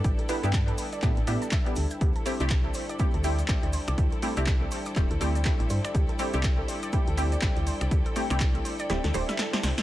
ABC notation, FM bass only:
X:1
M:4/4
L:1/16
Q:"Swing 16ths" 1/4=122
K:Ddor
V:1 name="FM bass" clef=bass
A,,, z2 G,,2 z3 A,, A,,, A,, z3 D,, z | D,, z2 C,,2 z4 D,,2 z C,, D,, z C,, | D,, z2 C,,2 z3 D,,, D,, D,,2 z A,,, G,, z | D,, z2 C,,2 z4 D,,2 z C,, D,, z C,, |
D,, z2 C,,2 z3 D,,, D,, D,,, z3 C,, z |]